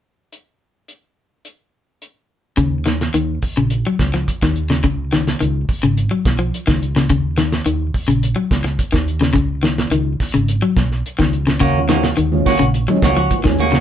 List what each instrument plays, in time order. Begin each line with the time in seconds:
0.32 closed hi-hat
0.88 closed hi-hat
1.45 closed hi-hat
2.02 closed hi-hat
2.57 fingered electric bass D#2, clean electric guitar C#3, kick, closed hi-hat
2.86 clean electric guitar D#3, snare, closed hi-hat
3.01 snare, closed hi-hat
3.14 fingered electric bass D#2, clean electric guitar D#3, closed hi-hat
3.42 muted fingered electric bass stroke, kick, open hi-hat
3.57 fingered electric bass A#1, clean electric guitar C#3, closed hi-hat
3.70 closed hi-hat
3.87 clean electric guitar F#3
3.99 fingered electric bass C#2, kick, snare, closed hi-hat
4.14 clean electric guitar F3, snare
4.28 kick, closed hi-hat
4.42 fingered electric bass D#2, clean electric guitar D#3, kick, snare
4.56 closed hi-hat
4.70 clean electric guitar C#3, snare
4.84 fingered electric bass C#2, clean electric guitar C#3, kick, closed hi-hat
5.13 clean electric guitar D#3, snare, closed hi-hat
5.27 snare, closed hi-hat
5.41 fingered electric bass C#2, clean electric guitar D#3, closed hi-hat
5.69 kick, open hi-hat
5.83 fingered electric bass G#1, clean electric guitar C#3, closed hi-hat
5.97 closed hi-hat
6.11 clean electric guitar F#3
6.25 fingered electric bass B1, kick, snare, closed hi-hat
6.39 clean electric guitar F3
6.54 closed hi-hat
6.67 fingered electric bass C#2, clean electric guitar D#3, kick, snare
6.82 closed hi-hat
6.96 clean electric guitar C#3, snare, closed hi-hat
7.09 fingered electric bass D#2, clean electric guitar C#3, kick, closed hi-hat
7.38 clean electric guitar D#3, snare, closed hi-hat
7.52 snare, closed hi-hat
7.66 fingered electric bass D#2, clean electric guitar D#3, closed hi-hat
7.94 kick, open hi-hat
8.08 fingered electric bass A#1, clean electric guitar C#3, closed hi-hat
8.23 closed hi-hat
8.36 clean electric guitar F#3
8.51 fingered electric bass C#2, kick, snare, closed hi-hat
8.64 muted clean electric guitar stroke, snare
8.79 kick, closed hi-hat
8.92 fingered electric bass D#2, clean electric guitar D#3, kick, snare
9.08 closed hi-hat
9.21 clean electric guitar C#3, snare
9.33 fingered electric bass C#2, clean electric guitar C#3, kick, closed hi-hat
9.63 clean electric guitar D#3, snare, closed hi-hat
9.78 snare, closed hi-hat
9.91 fingered electric bass C#2, clean electric guitar D#3, closed hi-hat
10.20 kick, snare, open hi-hat
10.34 fingered electric bass G#1, clean electric guitar C#3, closed hi-hat
10.48 closed hi-hat
10.62 clean electric guitar F#3
10.76 fingered electric bass B1, kick, snare, closed hi-hat
10.92 snare
11.06 closed hi-hat
11.19 fingered electric bass C#2, clean electric guitar D#3, kick, snare
11.33 closed hi-hat
11.47 clean electric guitar C#3, snare, closed hi-hat
11.60 fingered electric bass D#2, clean electric guitar C#3 A#3 C#4 F#4, kick, closed hi-hat
11.77 tonewheel organ D#3 G#3 C#4 F4
11.88 clean electric guitar D#3 A#3 C#4 F#4, snare, closed hi-hat, high conga
12.03 snare, closed hi-hat
12.17 fingered electric bass D#2, clean electric guitar D#3, closed hi-hat, high conga
12.32 tonewheel organ D#3 G#3 C#4 F4, high conga
12.46 clean electric guitar A#3 C#4 F#4, kick, snare, open hi-hat, high conga
12.59 fingered electric bass A#1, clean electric guitar C#3, closed hi-hat
12.74 closed hi-hat, high conga
12.88 tonewheel organ D#3 G#3 C#4 D#4, clean electric guitar F#3, high conga
13.02 fingered electric bass C#2, clean electric guitar A#3 C#4 F#4, kick, snare, closed hi-hat
13.17 clean electric guitar F3 C#4 F#4
13.31 kick, closed hi-hat, high conga
13.44 fingered electric bass D#2, clean electric guitar D#3, tonewheel organ D#3 G#3 C#4 G#4, kick, snare, high conga
13.59 clean electric guitar A#3 C#4 F#4, closed hi-hat
13.72 clean electric guitar C#3, snare